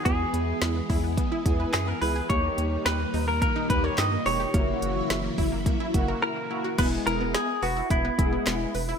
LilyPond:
<<
  \new Staff \with { instrumentName = "Clean electric guitar" } { \time 4/4 \key e \lydian \tempo 4 = 107 gis'2. gis'16 ais'16 b'8 | cis''4 b'8. ais'16 ais'8 b'16 cis''16 dis''8 cis''8~ | cis''2. ais'4 | b'8 ais'8 gis'8 fis'8 e'2 | }
  \new Staff \with { instrumentName = "Analog polysynth" } { \time 4/4 \key e \lydian <b e' gis'>4 r4. <b e' gis'>8 r8 <b e' gis'>8 | <ais dis' g'>4 r4. <ais dis' g'>8 r8 <ais dis' g'>8 | <ais e' fis'>4 r4. <ais e' fis'>8 r8 <ais e' fis'>8 | <gis b e' gis'>4 r4. <gis b e' gis'>4 r8 | }
  \new Staff \with { instrumentName = "Synth pluck" } { \time 4/4 \key e \lydian b16 r8. e'16 b16 e'16 b16 b16 e'16 r16 b'16 e'16 b16 e'16 gis'16 | ais16 r8. dis'16 ais16 dis'16 ais16 ais16 dis'16 r16 ais'16 dis'16 ais16 dis'16 g'16 | ais16 r8. e'16 ais16 e'16 ais16 ais16 e'16 r16 ais'16 e'16 ais16 e'16 fis'16 | b16 r16 e'16 b16 b16 r16 b'16 e'16 b16 b16 e'16 b16 b16 r16 b'16 e'16 | }
  \new Staff \with { instrumentName = "String machine" } { \clef bass \time 4/4 \key e \lydian <e gis b>1 | <ais, dis g>1 | <cis e fis e'>1 | r1 | }
  \new Staff \with { instrumentName = "Analog synth bass" } { \clef bass \time 4/4 \key e \lydian e,8 e,8 e,8 e,8. r16 e,8 fis,8 cis,8 | dis,8 dis,8 dis,8 dis,8. r16 dis,8 g,8 e,,8 | fis,,8 fis,,8 fis,,8 fis,,8. r16 fis,,8 r4 | e,,8 e,,8. r16 e,,8 e,,8 e,,8 e,,8 e,,8 | }
  \new DrumStaff \with { instrumentName = "Drums" } \drummode { \time 4/4 <hh bd>8 hh8 <hh sn>8 <hho bd>8 <hh bd>8 <hh bd>8 <hc hh sn>8 hho8 | <hh bd>8 hh8 <hh sn>8 hho8 <hh bd>8 <hh bd>8 <hc hh sn>8 hho8 | <hh bd>8 hh8 <hh sn>8 <hho bd>8 <hh bd>8 <hh bd>8 r4 | <cymc hh bd>8 hh8 <hh sn>8 hho8 <hh bd>8 <hh bd>8 <hc hh sn>8 hho8 | }
>>